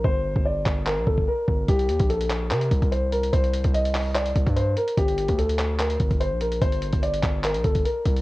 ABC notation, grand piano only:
X:1
M:4/4
L:1/8
Q:1/4=146
K:Gm
V:1 name="Grand piano"
c2 d2 B A B2 | G2 A2 B2 c B | c2 e2 d2 c B | G2 A2 B2 c B |
c2 d2 B A B2 |]